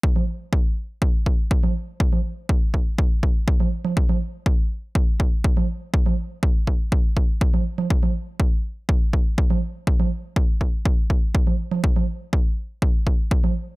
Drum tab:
CG |-O-----------O--|-O-----------O-O|-O-----------O--|-O-----------O-O|
BD |o---o---o-o-o---|o---o-o-o-o-o---|o---o---o-o-o---|o---o-o-o-o-o---|

CG |-O-----------O--|-O-----------O-O|-O-----------O--|
BD |o---o---o-o-o---|o---o-o-o-o-o---|o---o---o-o-o---|